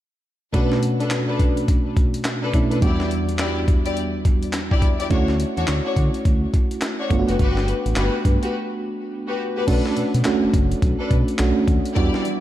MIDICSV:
0, 0, Header, 1, 5, 480
1, 0, Start_track
1, 0, Key_signature, 2, "minor"
1, 0, Tempo, 571429
1, 451, Time_signature, 4, 2, 24, 8
1, 10417, End_track
2, 0, Start_track
2, 0, Title_t, "String section"
2, 0, Program_c, 0, 48
2, 450, Note_on_c, 0, 62, 83
2, 451, Note_on_c, 0, 69, 80
2, 454, Note_on_c, 0, 71, 93
2, 587, Note_off_c, 0, 62, 0
2, 588, Note_off_c, 0, 69, 0
2, 589, Note_off_c, 0, 71, 0
2, 839, Note_on_c, 0, 62, 72
2, 842, Note_on_c, 0, 69, 67
2, 844, Note_on_c, 0, 71, 80
2, 923, Note_off_c, 0, 62, 0
2, 925, Note_off_c, 0, 69, 0
2, 925, Note_off_c, 0, 71, 0
2, 1077, Note_on_c, 0, 62, 75
2, 1080, Note_on_c, 0, 69, 59
2, 1083, Note_on_c, 0, 71, 77
2, 1162, Note_off_c, 0, 62, 0
2, 1164, Note_off_c, 0, 69, 0
2, 1165, Note_off_c, 0, 71, 0
2, 2037, Note_on_c, 0, 62, 67
2, 2040, Note_on_c, 0, 69, 67
2, 2044, Note_on_c, 0, 71, 84
2, 2122, Note_off_c, 0, 62, 0
2, 2124, Note_off_c, 0, 69, 0
2, 2125, Note_off_c, 0, 71, 0
2, 2277, Note_on_c, 0, 62, 67
2, 2280, Note_on_c, 0, 69, 60
2, 2282, Note_on_c, 0, 71, 73
2, 2362, Note_off_c, 0, 62, 0
2, 2364, Note_off_c, 0, 69, 0
2, 2365, Note_off_c, 0, 71, 0
2, 2370, Note_on_c, 0, 64, 88
2, 2372, Note_on_c, 0, 67, 79
2, 2375, Note_on_c, 0, 74, 87
2, 2596, Note_off_c, 0, 64, 0
2, 2597, Note_off_c, 0, 67, 0
2, 2598, Note_off_c, 0, 74, 0
2, 2850, Note_on_c, 0, 64, 76
2, 2853, Note_on_c, 0, 67, 72
2, 2855, Note_on_c, 0, 74, 81
2, 2987, Note_off_c, 0, 64, 0
2, 2989, Note_off_c, 0, 67, 0
2, 2990, Note_off_c, 0, 74, 0
2, 3239, Note_on_c, 0, 64, 67
2, 3241, Note_on_c, 0, 67, 68
2, 3244, Note_on_c, 0, 74, 77
2, 3323, Note_off_c, 0, 64, 0
2, 3324, Note_off_c, 0, 67, 0
2, 3326, Note_off_c, 0, 74, 0
2, 3957, Note_on_c, 0, 64, 77
2, 3959, Note_on_c, 0, 67, 68
2, 3963, Note_on_c, 0, 74, 82
2, 4042, Note_off_c, 0, 64, 0
2, 4043, Note_off_c, 0, 67, 0
2, 4045, Note_off_c, 0, 74, 0
2, 4196, Note_on_c, 0, 64, 67
2, 4199, Note_on_c, 0, 67, 64
2, 4201, Note_on_c, 0, 74, 79
2, 4281, Note_off_c, 0, 64, 0
2, 4283, Note_off_c, 0, 67, 0
2, 4284, Note_off_c, 0, 74, 0
2, 4290, Note_on_c, 0, 62, 86
2, 4292, Note_on_c, 0, 66, 76
2, 4294, Note_on_c, 0, 73, 96
2, 4427, Note_off_c, 0, 62, 0
2, 4428, Note_off_c, 0, 66, 0
2, 4429, Note_off_c, 0, 73, 0
2, 4678, Note_on_c, 0, 62, 73
2, 4680, Note_on_c, 0, 66, 70
2, 4683, Note_on_c, 0, 73, 84
2, 4762, Note_off_c, 0, 62, 0
2, 4763, Note_off_c, 0, 66, 0
2, 4765, Note_off_c, 0, 73, 0
2, 4918, Note_on_c, 0, 62, 73
2, 4920, Note_on_c, 0, 66, 69
2, 4922, Note_on_c, 0, 73, 81
2, 5002, Note_off_c, 0, 62, 0
2, 5004, Note_off_c, 0, 66, 0
2, 5005, Note_off_c, 0, 73, 0
2, 5877, Note_on_c, 0, 62, 70
2, 5878, Note_on_c, 0, 66, 62
2, 5880, Note_on_c, 0, 73, 81
2, 5962, Note_off_c, 0, 62, 0
2, 5963, Note_off_c, 0, 66, 0
2, 5963, Note_off_c, 0, 73, 0
2, 6116, Note_on_c, 0, 66, 75
2, 6118, Note_on_c, 0, 67, 64
2, 6120, Note_on_c, 0, 71, 74
2, 6197, Note_off_c, 0, 66, 0
2, 6200, Note_off_c, 0, 67, 0
2, 6204, Note_off_c, 0, 71, 0
2, 6207, Note_on_c, 0, 66, 87
2, 6210, Note_on_c, 0, 67, 87
2, 6212, Note_on_c, 0, 71, 99
2, 6435, Note_off_c, 0, 66, 0
2, 6436, Note_off_c, 0, 67, 0
2, 6437, Note_off_c, 0, 71, 0
2, 6689, Note_on_c, 0, 66, 73
2, 6691, Note_on_c, 0, 67, 69
2, 6693, Note_on_c, 0, 71, 85
2, 6827, Note_off_c, 0, 66, 0
2, 6828, Note_off_c, 0, 67, 0
2, 6829, Note_off_c, 0, 71, 0
2, 7078, Note_on_c, 0, 66, 74
2, 7080, Note_on_c, 0, 67, 66
2, 7082, Note_on_c, 0, 71, 74
2, 7162, Note_off_c, 0, 66, 0
2, 7164, Note_off_c, 0, 67, 0
2, 7165, Note_off_c, 0, 71, 0
2, 7795, Note_on_c, 0, 66, 77
2, 7798, Note_on_c, 0, 67, 61
2, 7801, Note_on_c, 0, 71, 74
2, 7881, Note_off_c, 0, 66, 0
2, 7883, Note_off_c, 0, 67, 0
2, 7884, Note_off_c, 0, 71, 0
2, 8036, Note_on_c, 0, 66, 65
2, 8039, Note_on_c, 0, 67, 62
2, 8042, Note_on_c, 0, 71, 78
2, 8122, Note_off_c, 0, 66, 0
2, 8122, Note_off_c, 0, 71, 0
2, 8123, Note_off_c, 0, 67, 0
2, 8128, Note_on_c, 0, 62, 87
2, 8130, Note_on_c, 0, 69, 76
2, 8132, Note_on_c, 0, 71, 101
2, 8355, Note_off_c, 0, 62, 0
2, 8356, Note_off_c, 0, 69, 0
2, 8357, Note_off_c, 0, 71, 0
2, 9235, Note_on_c, 0, 62, 73
2, 9239, Note_on_c, 0, 69, 70
2, 9241, Note_on_c, 0, 71, 80
2, 9321, Note_off_c, 0, 62, 0
2, 9323, Note_off_c, 0, 69, 0
2, 9324, Note_off_c, 0, 71, 0
2, 10047, Note_on_c, 0, 64, 82
2, 10048, Note_on_c, 0, 67, 77
2, 10051, Note_on_c, 0, 74, 98
2, 10274, Note_off_c, 0, 64, 0
2, 10275, Note_off_c, 0, 67, 0
2, 10277, Note_off_c, 0, 74, 0
2, 10417, End_track
3, 0, Start_track
3, 0, Title_t, "FM electric piano"
3, 0, Program_c, 1, 5
3, 443, Note_on_c, 1, 47, 72
3, 448, Note_on_c, 1, 57, 66
3, 453, Note_on_c, 1, 61, 61
3, 459, Note_on_c, 1, 62, 64
3, 464, Note_on_c, 1, 66, 83
3, 622, Control_c, 1, 64, 127
3, 2094, Note_off_c, 1, 47, 0
3, 2096, Note_off_c, 1, 57, 0
3, 2098, Note_off_c, 1, 61, 0
3, 2101, Note_off_c, 1, 62, 0
3, 2104, Note_off_c, 1, 66, 0
3, 2128, Note_on_c, 1, 47, 52
3, 2129, Note_on_c, 1, 57, 47
3, 2134, Note_on_c, 1, 61, 50
3, 2137, Note_on_c, 1, 62, 48
3, 2138, Note_on_c, 1, 64, 61
3, 2363, Note_on_c, 1, 40, 71
3, 2366, Note_off_c, 1, 62, 0
3, 2367, Note_on_c, 1, 55, 70
3, 2370, Note_off_c, 1, 47, 0
3, 2370, Note_off_c, 1, 57, 0
3, 2373, Note_off_c, 1, 61, 0
3, 2374, Note_on_c, 1, 59, 62
3, 2375, Note_off_c, 1, 64, 0
3, 2377, Note_on_c, 1, 62, 65
3, 2381, Control_c, 1, 64, 0
3, 2383, Note_on_c, 1, 66, 74
3, 2513, Control_c, 1, 64, 127
3, 4253, Note_off_c, 1, 40, 0
3, 4256, Note_off_c, 1, 55, 0
3, 4259, Note_off_c, 1, 59, 0
3, 4260, Note_off_c, 1, 62, 0
3, 4263, Note_off_c, 1, 66, 0
3, 4282, Note_on_c, 1, 57, 69
3, 4288, Note_on_c, 1, 61, 68
3, 4295, Note_on_c, 1, 64, 62
3, 4301, Control_c, 1, 64, 0
3, 4303, Note_on_c, 1, 66, 80
3, 4451, Control_c, 1, 64, 127
3, 5933, Note_off_c, 1, 57, 0
3, 5936, Note_off_c, 1, 61, 0
3, 5940, Note_off_c, 1, 64, 0
3, 5943, Note_off_c, 1, 66, 0
3, 5963, Note_on_c, 1, 57, 72
3, 5970, Note_on_c, 1, 59, 71
3, 5976, Note_on_c, 1, 62, 63
3, 5982, Control_c, 1, 64, 0
3, 5983, Note_on_c, 1, 65, 66
3, 6038, Note_on_c, 1, 66, 79
3, 6045, Note_off_c, 1, 65, 0
3, 6108, Control_c, 1, 64, 127
3, 7854, Note_off_c, 1, 57, 0
3, 7857, Note_off_c, 1, 59, 0
3, 7860, Note_off_c, 1, 62, 0
3, 7891, Note_off_c, 1, 66, 0
3, 8125, Note_on_c, 1, 57, 76
3, 8127, Note_on_c, 1, 61, 73
3, 8131, Note_on_c, 1, 62, 73
3, 8135, Note_on_c, 1, 66, 82
3, 8141, Control_c, 1, 64, 0
3, 8305, Control_c, 1, 64, 127
3, 8522, Note_off_c, 1, 57, 0
3, 8523, Note_off_c, 1, 61, 0
3, 8524, Note_off_c, 1, 62, 0
3, 8526, Note_off_c, 1, 66, 0
3, 8609, Note_on_c, 1, 57, 89
3, 8610, Note_on_c, 1, 61, 75
3, 8615, Note_on_c, 1, 62, 75
3, 8620, Note_on_c, 1, 66, 90
3, 9344, Note_off_c, 1, 57, 0
3, 9345, Note_off_c, 1, 61, 0
3, 9347, Note_off_c, 1, 62, 0
3, 9349, Note_off_c, 1, 66, 0
3, 9569, Note_on_c, 1, 57, 94
3, 9572, Note_on_c, 1, 61, 81
3, 9575, Note_on_c, 1, 62, 78
3, 9578, Note_on_c, 1, 66, 95
3, 9963, Note_off_c, 1, 57, 0
3, 9965, Note_off_c, 1, 61, 0
3, 9966, Note_off_c, 1, 62, 0
3, 9968, Note_off_c, 1, 66, 0
3, 10045, Note_on_c, 1, 55, 87
3, 10049, Note_on_c, 1, 59, 80
3, 10052, Note_on_c, 1, 62, 88
3, 10054, Note_on_c, 1, 66, 95
3, 10064, Control_c, 1, 64, 0
3, 10218, Control_c, 1, 64, 127
3, 10417, Note_off_c, 1, 55, 0
3, 10417, Note_off_c, 1, 59, 0
3, 10417, Note_off_c, 1, 62, 0
3, 10417, Note_off_c, 1, 66, 0
3, 10417, End_track
4, 0, Start_track
4, 0, Title_t, "Analog synth bass"
4, 0, Program_c, 2, 38
4, 4291, Note_on_c, 2, 38, 94
4, 4575, Note_off_c, 2, 38, 0
4, 4680, Note_on_c, 2, 40, 84
4, 4747, Note_off_c, 2, 40, 0
4, 4771, Note_on_c, 2, 38, 91
4, 4880, Note_off_c, 2, 38, 0
4, 5011, Note_on_c, 2, 50, 100
4, 5120, Note_off_c, 2, 50, 0
4, 5253, Note_on_c, 2, 38, 88
4, 5427, Note_off_c, 2, 38, 0
4, 5970, Note_on_c, 2, 31, 111
4, 6079, Note_off_c, 2, 31, 0
4, 6119, Note_on_c, 2, 30, 75
4, 6186, Note_off_c, 2, 30, 0
4, 6211, Note_on_c, 2, 31, 97
4, 6496, Note_off_c, 2, 31, 0
4, 6600, Note_on_c, 2, 33, 86
4, 6667, Note_off_c, 2, 33, 0
4, 6693, Note_on_c, 2, 31, 99
4, 6801, Note_off_c, 2, 31, 0
4, 6931, Note_on_c, 2, 43, 96
4, 7040, Note_off_c, 2, 43, 0
4, 8131, Note_on_c, 2, 35, 104
4, 8240, Note_off_c, 2, 35, 0
4, 8373, Note_on_c, 2, 47, 48
4, 8432, Note_off_c, 2, 47, 0
4, 8521, Note_on_c, 2, 47, 94
4, 8587, Note_off_c, 2, 47, 0
4, 8760, Note_on_c, 2, 30, 44
4, 8797, Note_off_c, 2, 30, 0
4, 8851, Note_on_c, 2, 30, 91
4, 9027, Note_off_c, 2, 30, 0
4, 9092, Note_on_c, 2, 35, 96
4, 9201, Note_off_c, 2, 35, 0
4, 9331, Note_on_c, 2, 47, 95
4, 9440, Note_off_c, 2, 47, 0
4, 9571, Note_on_c, 2, 35, 97
4, 9680, Note_off_c, 2, 35, 0
4, 9809, Note_on_c, 2, 39, 87
4, 9918, Note_off_c, 2, 39, 0
4, 10050, Note_on_c, 2, 40, 101
4, 10159, Note_off_c, 2, 40, 0
4, 10292, Note_on_c, 2, 52, 48
4, 10351, Note_off_c, 2, 52, 0
4, 10417, End_track
5, 0, Start_track
5, 0, Title_t, "Drums"
5, 453, Note_on_c, 9, 36, 98
5, 453, Note_on_c, 9, 42, 64
5, 537, Note_off_c, 9, 36, 0
5, 537, Note_off_c, 9, 42, 0
5, 602, Note_on_c, 9, 38, 58
5, 686, Note_off_c, 9, 38, 0
5, 694, Note_on_c, 9, 42, 70
5, 778, Note_off_c, 9, 42, 0
5, 844, Note_on_c, 9, 42, 45
5, 927, Note_on_c, 9, 39, 83
5, 928, Note_off_c, 9, 42, 0
5, 933, Note_on_c, 9, 38, 104
5, 933, Note_on_c, 9, 42, 74
5, 1011, Note_off_c, 9, 39, 0
5, 1017, Note_off_c, 9, 38, 0
5, 1017, Note_off_c, 9, 42, 0
5, 1172, Note_on_c, 9, 36, 86
5, 1174, Note_on_c, 9, 42, 67
5, 1256, Note_off_c, 9, 36, 0
5, 1258, Note_off_c, 9, 42, 0
5, 1320, Note_on_c, 9, 42, 51
5, 1404, Note_off_c, 9, 42, 0
5, 1413, Note_on_c, 9, 36, 85
5, 1414, Note_on_c, 9, 42, 69
5, 1497, Note_off_c, 9, 36, 0
5, 1498, Note_off_c, 9, 42, 0
5, 1652, Note_on_c, 9, 36, 80
5, 1653, Note_on_c, 9, 42, 56
5, 1736, Note_off_c, 9, 36, 0
5, 1737, Note_off_c, 9, 42, 0
5, 1798, Note_on_c, 9, 42, 51
5, 1882, Note_off_c, 9, 42, 0
5, 1885, Note_on_c, 9, 39, 91
5, 1891, Note_on_c, 9, 38, 110
5, 1892, Note_on_c, 9, 42, 84
5, 1969, Note_off_c, 9, 39, 0
5, 1975, Note_off_c, 9, 38, 0
5, 1976, Note_off_c, 9, 42, 0
5, 2130, Note_on_c, 9, 36, 74
5, 2132, Note_on_c, 9, 42, 65
5, 2214, Note_off_c, 9, 36, 0
5, 2216, Note_off_c, 9, 42, 0
5, 2281, Note_on_c, 9, 42, 51
5, 2365, Note_off_c, 9, 42, 0
5, 2370, Note_on_c, 9, 42, 61
5, 2371, Note_on_c, 9, 36, 97
5, 2454, Note_off_c, 9, 42, 0
5, 2455, Note_off_c, 9, 36, 0
5, 2520, Note_on_c, 9, 38, 60
5, 2604, Note_off_c, 9, 38, 0
5, 2613, Note_on_c, 9, 42, 68
5, 2697, Note_off_c, 9, 42, 0
5, 2761, Note_on_c, 9, 42, 46
5, 2844, Note_on_c, 9, 39, 88
5, 2845, Note_off_c, 9, 42, 0
5, 2850, Note_on_c, 9, 38, 107
5, 2851, Note_on_c, 9, 42, 69
5, 2928, Note_off_c, 9, 39, 0
5, 2934, Note_off_c, 9, 38, 0
5, 2935, Note_off_c, 9, 42, 0
5, 3090, Note_on_c, 9, 36, 91
5, 3092, Note_on_c, 9, 42, 69
5, 3174, Note_off_c, 9, 36, 0
5, 3176, Note_off_c, 9, 42, 0
5, 3239, Note_on_c, 9, 42, 53
5, 3323, Note_off_c, 9, 42, 0
5, 3333, Note_on_c, 9, 42, 63
5, 3417, Note_off_c, 9, 42, 0
5, 3571, Note_on_c, 9, 36, 88
5, 3573, Note_on_c, 9, 42, 65
5, 3655, Note_off_c, 9, 36, 0
5, 3657, Note_off_c, 9, 42, 0
5, 3718, Note_on_c, 9, 42, 53
5, 3802, Note_off_c, 9, 42, 0
5, 3804, Note_on_c, 9, 39, 87
5, 3810, Note_on_c, 9, 38, 107
5, 3811, Note_on_c, 9, 42, 86
5, 3888, Note_off_c, 9, 39, 0
5, 3894, Note_off_c, 9, 38, 0
5, 3895, Note_off_c, 9, 42, 0
5, 3959, Note_on_c, 9, 36, 85
5, 4043, Note_off_c, 9, 36, 0
5, 4048, Note_on_c, 9, 36, 75
5, 4050, Note_on_c, 9, 42, 66
5, 4132, Note_off_c, 9, 36, 0
5, 4134, Note_off_c, 9, 42, 0
5, 4199, Note_on_c, 9, 42, 53
5, 4283, Note_off_c, 9, 42, 0
5, 4289, Note_on_c, 9, 42, 61
5, 4290, Note_on_c, 9, 36, 104
5, 4373, Note_off_c, 9, 42, 0
5, 4374, Note_off_c, 9, 36, 0
5, 4438, Note_on_c, 9, 38, 58
5, 4522, Note_off_c, 9, 38, 0
5, 4533, Note_on_c, 9, 42, 68
5, 4617, Note_off_c, 9, 42, 0
5, 4682, Note_on_c, 9, 42, 45
5, 4766, Note_off_c, 9, 42, 0
5, 4766, Note_on_c, 9, 39, 84
5, 4772, Note_on_c, 9, 38, 108
5, 4772, Note_on_c, 9, 42, 74
5, 4850, Note_off_c, 9, 39, 0
5, 4856, Note_off_c, 9, 38, 0
5, 4856, Note_off_c, 9, 42, 0
5, 5010, Note_on_c, 9, 36, 85
5, 5013, Note_on_c, 9, 42, 71
5, 5094, Note_off_c, 9, 36, 0
5, 5097, Note_off_c, 9, 42, 0
5, 5160, Note_on_c, 9, 42, 51
5, 5244, Note_off_c, 9, 42, 0
5, 5252, Note_on_c, 9, 36, 86
5, 5253, Note_on_c, 9, 42, 67
5, 5336, Note_off_c, 9, 36, 0
5, 5337, Note_off_c, 9, 42, 0
5, 5491, Note_on_c, 9, 36, 86
5, 5493, Note_on_c, 9, 42, 64
5, 5575, Note_off_c, 9, 36, 0
5, 5577, Note_off_c, 9, 42, 0
5, 5637, Note_on_c, 9, 42, 52
5, 5721, Note_off_c, 9, 42, 0
5, 5723, Note_on_c, 9, 39, 80
5, 5729, Note_on_c, 9, 38, 111
5, 5729, Note_on_c, 9, 42, 89
5, 5807, Note_off_c, 9, 39, 0
5, 5813, Note_off_c, 9, 38, 0
5, 5813, Note_off_c, 9, 42, 0
5, 5968, Note_on_c, 9, 36, 76
5, 5969, Note_on_c, 9, 42, 64
5, 6052, Note_off_c, 9, 36, 0
5, 6053, Note_off_c, 9, 42, 0
5, 6120, Note_on_c, 9, 42, 52
5, 6204, Note_off_c, 9, 42, 0
5, 6211, Note_on_c, 9, 36, 102
5, 6211, Note_on_c, 9, 42, 60
5, 6295, Note_off_c, 9, 36, 0
5, 6295, Note_off_c, 9, 42, 0
5, 6361, Note_on_c, 9, 38, 64
5, 6445, Note_off_c, 9, 38, 0
5, 6452, Note_on_c, 9, 42, 66
5, 6536, Note_off_c, 9, 42, 0
5, 6602, Note_on_c, 9, 42, 46
5, 6685, Note_on_c, 9, 39, 85
5, 6686, Note_off_c, 9, 42, 0
5, 6691, Note_on_c, 9, 38, 108
5, 6691, Note_on_c, 9, 42, 74
5, 6769, Note_off_c, 9, 39, 0
5, 6775, Note_off_c, 9, 38, 0
5, 6775, Note_off_c, 9, 42, 0
5, 6930, Note_on_c, 9, 36, 89
5, 6931, Note_on_c, 9, 42, 74
5, 7014, Note_off_c, 9, 36, 0
5, 7015, Note_off_c, 9, 42, 0
5, 7079, Note_on_c, 9, 42, 57
5, 7163, Note_off_c, 9, 42, 0
5, 8129, Note_on_c, 9, 42, 63
5, 8129, Note_on_c, 9, 49, 87
5, 8130, Note_on_c, 9, 36, 109
5, 8213, Note_off_c, 9, 42, 0
5, 8213, Note_off_c, 9, 49, 0
5, 8214, Note_off_c, 9, 36, 0
5, 8279, Note_on_c, 9, 38, 67
5, 8363, Note_off_c, 9, 38, 0
5, 8371, Note_on_c, 9, 42, 72
5, 8455, Note_off_c, 9, 42, 0
5, 8521, Note_on_c, 9, 42, 52
5, 8605, Note_off_c, 9, 42, 0
5, 8605, Note_on_c, 9, 39, 87
5, 8611, Note_on_c, 9, 38, 116
5, 8612, Note_on_c, 9, 42, 77
5, 8689, Note_off_c, 9, 39, 0
5, 8695, Note_off_c, 9, 38, 0
5, 8696, Note_off_c, 9, 42, 0
5, 8850, Note_on_c, 9, 36, 86
5, 8852, Note_on_c, 9, 42, 75
5, 8934, Note_off_c, 9, 36, 0
5, 8936, Note_off_c, 9, 42, 0
5, 9001, Note_on_c, 9, 42, 54
5, 9085, Note_off_c, 9, 42, 0
5, 9091, Note_on_c, 9, 36, 83
5, 9092, Note_on_c, 9, 42, 62
5, 9175, Note_off_c, 9, 36, 0
5, 9176, Note_off_c, 9, 42, 0
5, 9330, Note_on_c, 9, 36, 86
5, 9331, Note_on_c, 9, 42, 65
5, 9414, Note_off_c, 9, 36, 0
5, 9415, Note_off_c, 9, 42, 0
5, 9477, Note_on_c, 9, 42, 53
5, 9561, Note_off_c, 9, 42, 0
5, 9563, Note_on_c, 9, 39, 87
5, 9569, Note_on_c, 9, 38, 109
5, 9569, Note_on_c, 9, 42, 89
5, 9647, Note_off_c, 9, 39, 0
5, 9653, Note_off_c, 9, 38, 0
5, 9653, Note_off_c, 9, 42, 0
5, 9808, Note_on_c, 9, 36, 82
5, 9809, Note_on_c, 9, 42, 69
5, 9892, Note_off_c, 9, 36, 0
5, 9893, Note_off_c, 9, 42, 0
5, 9958, Note_on_c, 9, 42, 52
5, 10042, Note_off_c, 9, 42, 0
5, 10050, Note_on_c, 9, 36, 100
5, 10050, Note_on_c, 9, 42, 58
5, 10134, Note_off_c, 9, 36, 0
5, 10134, Note_off_c, 9, 42, 0
5, 10199, Note_on_c, 9, 38, 65
5, 10283, Note_off_c, 9, 38, 0
5, 10291, Note_on_c, 9, 42, 71
5, 10375, Note_off_c, 9, 42, 0
5, 10417, End_track
0, 0, End_of_file